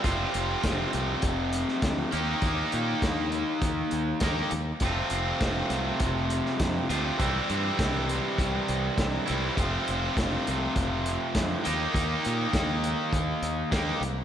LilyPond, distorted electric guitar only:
\new Staff \with { instrumentName = "Distorted electric guitar" } { \time 4/4 \key f \major \tempo 4 = 101 <f, c f a c' f'>2.~ <f, c f a c' f'>8 <ees bes ees' g'>8~ | <ees bes ees' g'>2. <ees bes ees' g'>8 r8 | <f, c f a c' f'>2.~ <f, c f a c' f'>8 <f, c f a c' f'>8 | <c e g c' e'>2.~ <c e g c' e'>8 <c e g c' e'>8 |
<f, c f a c' f'>2.~ <f, c f a c' f'>8 <ees bes ees' g'>8~ | <ees bes ees' g'>2. <ees bes ees' g'>8 r8 | }